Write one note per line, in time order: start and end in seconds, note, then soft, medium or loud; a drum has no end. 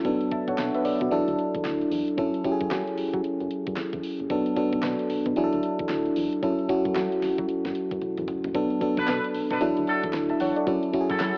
0.05 0.17 B1 loud
0.05 0.27 F#3 medium
0.05 0.27 B3 medium
0.05 0.27 D4 medium
0.05 0.27 A4 medium
0.05 kick loud
0.05 closed hi-hat medium
0.21 closed hi-hat soft
0.31 0.47 E5 medium
0.31 0.47 A5 medium
0.31 kick medium
0.31 closed hi-hat medium
0.48 0.56 B1 medium
0.48 0.74 C#5 medium
0.48 0.73 F#5 medium
0.48 kick medium
0.48 closed hi-hat soft
0.58 0.70 B2 medium
0.58 snare loud
0.58 clap medium
0.58 closed hi-hat medium
0.75 0.85 B4 medium
0.75 0.84 E5 medium
0.75 closed hi-hat soft
0.85 0.92 B2 soft
0.85 1.00 A4 medium
0.85 1.00 D5 medium
0.85 open hi-hat medium
1.01 1.09 B2 medium
1.01 1.27 F#4 medium
1.01 1.26 B4 medium
1.01 kick medium
1.01 closed hi-hat medium
1.11 1.23 E2 medium
1.11 1.97 F#3 medium
1.11 1.97 D4 medium
1.11 1.98 E4 medium
1.11 1.98 A4 loud
1.11 closed hi-hat medium
1.28 1.35 D2 loud
1.28 closed hi-hat medium
1.39 closed hi-hat medium
1.55 1.62 E2 medium
1.55 kick medium
1.55 closed hi-hat medium
1.65 1.84 D2 medium
1.65 snare medium
1.65 clap medium
1.65 closed hi-hat medium
1.81 closed hi-hat medium
1.91 2.03 E2 medium
1.91 open hi-hat medium
2.08 closed hi-hat soft
2.17 2.30 F#2 medium
2.17 2.39 F#3 medium
2.17 2.39 C#4 medium
2.17 2.40 E4 medium
2.17 2.40 A4 medium
2.17 kick loud
2.17 closed hi-hat medium
2.34 closed hi-hat medium
2.44 3.25 F#3 medium
2.44 3.26 C#4 medium
2.44 3.26 E4 medium
2.44 2.52 G4 medium
2.44 kick medium
2.44 closed hi-hat medium
2.52 3.29 G#4 medium
2.60 2.68 F#2 medium
2.60 kick medium
2.60 closed hi-hat soft
2.71 2.83 F#3 loud
2.71 snare loud
2.71 clap loud
2.71 closed hi-hat medium
2.87 closed hi-hat soft
2.98 3.04 F#3 soft
2.98 open hi-hat medium
3.14 3.21 F#3 loud
3.14 kick medium
3.24 closed hi-hat medium
3.40 3.48 F#2 medium
3.40 closed hi-hat medium
3.51 closed hi-hat medium
3.67 3.74 F#2 medium
3.67 kick medium
3.67 closed hi-hat medium
3.76 3.84 E2 soft
3.76 snare medium
3.76 clap medium
3.76 closed hi-hat medium
3.93 4.01 E2 medium
3.93 kick medium
3.93 closed hi-hat medium
4.04 open hi-hat medium
4.20 4.28 F#1 medium
4.20 closed hi-hat medium
4.30 4.42 B1 loud
4.30 4.52 F#3 medium
4.30 4.52 B3 medium
4.30 4.52 D4 medium
4.30 4.52 A4 medium
4.30 kick loud
4.30 closed hi-hat medium
4.46 closed hi-hat medium
4.56 5.35 F#3 medium
4.56 5.36 B3 medium
4.56 5.35 D4 medium
4.56 5.37 A4 medium
4.56 kick medium
4.56 closed hi-hat medium
4.73 4.80 B1 loud
4.73 kick medium
4.73 closed hi-hat soft
4.83 4.96 B2 medium
4.83 snare loud
4.83 clap loud
4.83 closed hi-hat medium
4.99 closed hi-hat soft
5.10 5.17 B2 soft
5.10 open hi-hat medium
5.25 5.34 B2 medium
5.25 kick medium
5.25 closed hi-hat medium
5.36 5.49 E2 loud
5.36 6.22 F#3 medium
5.36 6.22 D4 medium
5.36 6.23 E4 medium
5.36 5.44 G#4 medium
5.36 closed hi-hat medium
5.44 6.26 A4 loud
5.52 5.61 D2 loud
5.52 closed hi-hat medium
5.63 closed hi-hat medium
5.79 5.87 E2 medium
5.79 kick medium
5.79 closed hi-hat medium
5.89 6.10 D2 medium
5.89 snare loud
5.89 clap medium
5.89 closed hi-hat medium
6.05 closed hi-hat medium
6.16 6.28 E2 medium
6.16 open hi-hat medium
6.32 closed hi-hat medium
6.42 6.55 F#2 loud
6.42 6.64 F#3 medium
6.42 6.64 C#4 medium
6.42 6.64 E4 medium
6.42 6.64 A4 medium
6.42 kick loud
6.42 closed hi-hat medium
6.58 closed hi-hat soft
6.68 7.50 F#3 medium
6.68 7.50 C#4 medium
6.68 7.50 E4 medium
6.68 7.51 F#4 medium
6.68 kick medium
6.68 closed hi-hat medium
6.85 6.93 F#2 medium
6.85 kick medium
6.85 closed hi-hat soft
6.95 7.08 F#3 loud
6.95 snare loud
6.95 clap medium
6.95 closed hi-hat medium
7.12 closed hi-hat soft
7.22 7.29 F#3 soft
7.22 snare medium
7.22 open hi-hat medium
7.38 7.46 F#3 medium
7.38 kick medium
7.49 closed hi-hat medium
7.65 7.73 F#2 loud
7.65 snare medium
7.65 closed hi-hat medium
7.75 closed hi-hat medium
7.91 7.99 F#2 loud
7.91 kick medium
7.91 closed hi-hat medium
8.02 8.09 E2 medium
8.02 closed hi-hat medium
8.02 high tom medium
8.18 8.26 E2 medium
8.18 closed hi-hat medium
8.18 mid tom medium
8.28 closed hi-hat medium
8.28 mid tom medium
8.44 8.52 F#1 loud
8.44 closed hi-hat medium
8.44 floor tom loud
8.54 8.67 B1 medium
8.54 8.76 F#3 medium
8.54 8.76 B3 medium
8.54 8.76 D4 medium
8.54 8.77 A4 loud
8.54 kick loud
8.54 closed hi-hat medium
8.71 closed hi-hat soft
8.81 9.59 F#3 medium
8.81 9.61 B3 medium
8.81 9.60 D4 medium
8.81 9.60 A4 loud
8.81 kick medium
8.81 closed hi-hat medium
8.97 9.05 B1 loud
8.97 9.06 D4 medium
8.97 9.07 A4 medium
8.97 9.07 B4 medium
8.97 kick medium
8.97 closed hi-hat soft
9.07 9.20 B2 loud
9.07 9.25 D4 medium
9.07 9.25 A4 medium
9.07 9.25 B4 medium
9.07 snare loud
9.07 clap medium
9.07 closed hi-hat medium
9.24 closed hi-hat soft
9.34 9.42 B2 soft
9.34 open hi-hat medium
9.50 9.58 B2 medium
9.50 9.62 D4 medium
9.50 9.62 A4 medium
9.50 9.62 B4 medium
9.50 kick medium
9.50 closed hi-hat medium
9.61 9.73 E2 loud
9.61 10.47 F#3 loud
9.61 10.47 D4 medium
9.61 10.47 E4 medium
9.61 10.14 A4 loud
9.61 closed hi-hat medium
9.77 9.85 D2 medium
9.77 closed hi-hat medium
9.87 10.04 D4 medium
9.87 10.04 F#4 medium
9.87 10.05 A4 medium
9.87 closed hi-hat medium
10.03 10.12 E2 medium
10.03 kick medium
10.03 closed hi-hat medium
10.13 10.34 D2 medium
10.13 snare medium
10.13 clap medium
10.13 closed hi-hat medium
10.29 10.40 E5 medium
10.29 10.40 A5 medium
10.29 closed hi-hat medium
10.40 10.53 E2 medium
10.40 10.56 C#5 medium
10.40 10.56 F#5 medium
10.40 open hi-hat medium
10.56 10.67 A4 medium
10.56 10.82 D5 medium
10.56 closed hi-hat soft
10.67 10.79 F#2 loud
10.67 10.89 F#3 medium
10.67 10.89 C#4 medium
10.67 10.89 E4 medium
10.67 10.89 A4 medium
10.67 kick loud
10.67 closed hi-hat medium
10.83 closed hi-hat medium
10.93 11.38 F#3 medium
10.93 11.38 C#4 medium
10.93 11.38 E4 medium
10.93 11.02 F#4 medium
10.93 kick medium
10.93 closed hi-hat medium
11.01 11.38 G#4 medium
11.09 11.18 F#2 medium
11.09 11.19 E4 medium
11.09 11.19 F#4 medium
11.09 11.19 A4 medium
11.09 kick medium
11.09 closed hi-hat soft
11.20 11.32 F#3 loud
11.20 11.37 E4 medium
11.20 11.37 F#4 medium
11.20 11.37 A4 medium
11.20 snare loud
11.20 clap loud
11.20 closed hi-hat medium